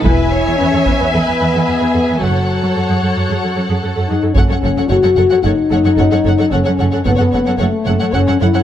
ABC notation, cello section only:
X:1
M:4/4
L:1/16
Q:1/4=111
K:F#dor
V:1 name="Cello section" clef=bass
E,, z2 E,, E,, E,, E,, E,, E,, E,, E,, E,, E,, E,, E,, E,, | F,, z2 F,, F,, F,, F,, F,, F,, F,, F,, F,, F,, F,, F,, F,, | F,, F,, F,, F,, F,, F,, F,, F,, F,, z F,, F,, F,, F,, F,, F,, | F,, F,, F,, F,, F,, F,, F,, F,, F,, z F,, F,, F,, F,, F,, F,, |]